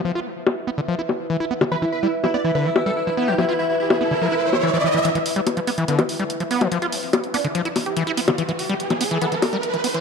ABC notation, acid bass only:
X:1
M:4/4
L:1/16
Q:1/4=144
K:Ephr
V:1 name="Acid bass" clef=bass
F, F z4 B, D, F, E z2 E, E B, D, | E, E, z G, z F, B, E, D, F, z G, z F, B, E, | F, F z4 B, D, F, E z2 E, E, E, E, | E, E, z G, z F, B, E, D, F, z G, z F, B, E, |
F, F z4 B, D, F, E z2 E, E B, D, | E, E, z G, z E, B, E, E, E, z G, z E, B, E, |]